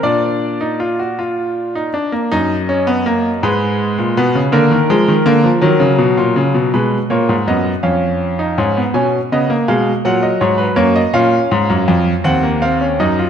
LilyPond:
<<
  \new Staff \with { instrumentName = "Grand piano" } { \time 6/8 \key ees \minor \tempo 4. = 54 d''2~ d''8 r8 | ees''4. ces''4. | bes'2. | b'8 des''8 dis''8 f''4. |
aes''8 ees''8 f''8 ges''16 ees''16 des''16 ces''16 des''16 ees''16 | \key bes \minor f''4. ges''8 f''8 ees''8 | }
  \new Staff \with { instrumentName = "Grand piano" } { \clef bass \time 6/8 \key ees \minor << { d'8. ees'16 f'16 ges'16 f'8. ees'16 d'16 bes16 | ees'8 des'16 ces'16 bes8 aes4 ces'8 | bes8 aes8 bes8 ges4. | aes8 bes8 b8 des'8. ees'16 des'16 ces'16 |
des'8 ces'16 bes16 aes8 ges4 bes8 | \key bes \minor des'4. c'16 bes16 c'16 des'16 ees'16 f'16 | } \\ { bes,2~ bes,8 r8 | ges,4. aes,8. bes,16 ces16 des16 | d16 ees16 f16 ees16 d16 f16 ees16 des16 ces16 bes,16 des16 ces16 | b,8 bes,16 aes,16 fis,8 f,4 aes,8 |
ces8 des8 ces8 bes,8 aes,8 ges,8 | bes,8 aes,16 ges,16 f,8 ees,4 ges,8 | } >> }
>>